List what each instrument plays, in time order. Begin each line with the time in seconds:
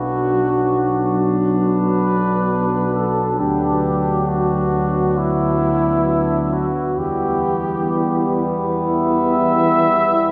Already playing: tuba B1, euphonium F#3, trombone section B3, flugelhorn D4, cornet F#4
1.57 cornet B4
2.94 cornet A4
3.39 tuba D2, euphonium F#3, trombone section B3, flugelhorn D4, cornet G4
4.28 cornet F#4
5.18 cornet E4
6.53 cornet F#4
6.97 tuba E2, euphonium E3, trombone section G3, flugelhorn B3, cornet G4
8.83 cornet E5